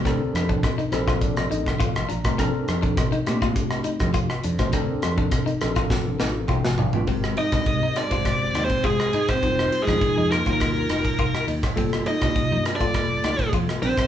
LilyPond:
<<
  \new Staff \with { instrumentName = "Lead electric guitar" } { \time 4/4 \key bes \major \tempo 4 = 102 r1 | r1 | r1 | \key aes \lydian r8 ees''4 d''8~ \tuplet 3/2 { d''4 c''8 } aes'8. c''16~ |
\tuplet 3/2 { c''4 aes'8~ } aes'8 bes'2 r8 | r8 ees''8~ \tuplet 3/2 { ees''8. r16 d''8~ } d''4 r8 c''8 | }
  \new Staff \with { instrumentName = "Clean electric guitar" } { \time 4/4 \key bes \major c'8 r16 d'8 ees'8 f'8 r16 ees'8 f'8 d'8 | c'8 r16 d'8 ees'8 f'8 r16 ees'8 f'8 d'8 | c'8 r16 d'8 ees'8 f'8 r16 ees'8 f'8 d'8 | \key aes \lydian c'8 r16 d'8 ees'8 f'8 r16 ees'8 f'8 ees'8 |
c'8 r16 d'8 ees'8 f'8 r16 ees'8 f'8 ees'8 | c'8 r16 d'8 ees'8 f'8 r16 ees'8 f'8 d'8 | }
  \new Staff \with { instrumentName = "Tine electric piano" } { \time 4/4 \key bes \major << { r4. c''8 d''8 ees''8 f''8 bes''8 | r1 | r2. g''8 f''8 | \key aes \lydian r1 |
r1 | r1 | } \\ { <c' d' a' bes'>4~ <c' d' a' bes'>16 r16 <c' d' a' bes'>4.~ <c' d' a' bes'>16 r8 <a c' d' bes'>16 | <c' d' a' bes'>4~ <c' d' a' bes'>16 r16 <a c' d' g'>4.~ <a c' d' g'>16 r8 <a c' d' c''>16 | <c' d' a' bes'>4~ <c' d' a' bes'>16 r16 <c' d' a' bes'>4.~ <c' d' a' bes'>16 r8 <a c' d' f'>16 | <aes c' g' bes'>8. <aes c' g' bes'>8. r16 <aes c' g' c''>4.~ <aes c' g' c''>16 r8 |
<g ees' f' bes'>8. <f ees' f' bes'>8. r16 <g ees' f' bes'>4.~ <g ees' f' bes'>16 r8 | <g bes f' a'>8. <g bes f' g'>8. r16 <g bes f' a'>4.~ <g bes f' a'>16 <g c' d' bes'>8 | } >> }
  \new Staff \with { instrumentName = "Hollow-body jazz guitar" } { \time 4/4 \key bes \major r1 | r1 | r1 | \key aes \lydian r8 ees'4 d'8~ \tuplet 3/2 { d'4 c'8 } aes8. c'16~ |
\tuplet 3/2 { c'4 aes8~ } aes8 bes2 r8 | r8 ees'8~ \tuplet 3/2 { ees'8. r16 d'8~ } d'4 r8 c'8 | }
  \new Staff \with { instrumentName = "Fretless electric bass" } { \clef bass \time 4/4 \key bes \major d,16 r16 f,8 r8 bes,,8. bes,,16 a,,8 a,,16 a,,16 bes,,16 r16 | bes,,16 r16 f,8 a,,16 r16 bes,8 r8. f,8 r16 f,16 bes,,16 | d,16 r16 f,8 r8 bes,,8. bes,,16 a,,8 a,,16 a,,16 bes,,16 a,,16 | \key aes \lydian aes,,8 r16 c,8 aes,8 g,,8. ees,16 r16 g,,16 r16 aes,16 r16 |
f,,8 r16 f,16 r16 f,8 ees,8. f,,16 r16 f,,16 r16 ees,16 r16 | g,,8 r16 c,8 g,8 f,,8. d,16 r16 f,16 r16 bes,,16 r16 | }
  \new DrumStaff \with { instrumentName = "Drums" } \drummode { \time 4/4 <hh bd ss>8 <hh ss>16 bd16 <hh bd ss>16 hh16 <hh ss>16 <hh bd ss>16 <hh bd>16 <hh ss>16 hh16 <bd ss>16 <hh bd>16 <hh ss>16 hh16 <hh bd ss>16 | <hh bd ss>8 <hh ss>16 <hh bd>16 <hh bd ss>16 hh16 <hh ss>16 <bd ss>16 <hh bd>16 ss16 hh16 <hh bd ss>16 <hh bd>16 ss16 hh16 <hh bd ss>16 | <hh bd ss>8 <hh ss>16 bd16 <hh bd ss>16 hh16 <hh ss>16 <hh bd ss>16 <bd sn>8 sn8 <bd toml>16 sn16 tomfh16 tomfh16 | <bd cymr>16 ss16 cymr16 <bd cymr ss>16 <bd cymr>8 <cymr ss>16 <bd cymr>16 <bd cymr ss>8 <cymr ss>16 <bd cymr>16 <bd cymr>16 ss16 cymr16 <bd cymr ss>16 |
<bd cymr>16 ss16 cymr16 <bd cymr ss>16 <bd cymr>8 <cymr ss>16 <bd cymr>16 <bd cymr ss>8 <cymr ss>16 <bd cymr>16 <bd cymr>16 ss16 cymr16 <bd cymr ss>16 | <bd cymr>16 ss16 cymr16 <bd cymr ss>16 <bd cymr>8 <cymr ss>16 <bd cymr>16 <bd cymr ss>8 <cymr ss>16 <bd cymr>16 <bd cymr>16 ss16 cymr16 <bd cymr ss>16 | }
>>